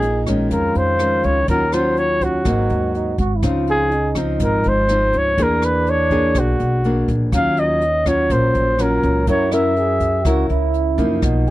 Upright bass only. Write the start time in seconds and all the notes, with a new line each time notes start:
Already playing: A#1
0.51 F2
0.75 F2
1.24 C#2
1.48 D#2
2.45 G#1
2.70 D#2
3.18 G#1
3.43 C#2
4.40 G#1
4.66 G#1
5.14 C#2
5.38 E2
6.35 B1
6.60 B1
7.08 A#1
7.32 D#2
8.30 A#1
8.55 A#1
9.03 C#2
9.27 F#2
10.25 C#2
10.50 C#2
10.98 F#2
11.22 B1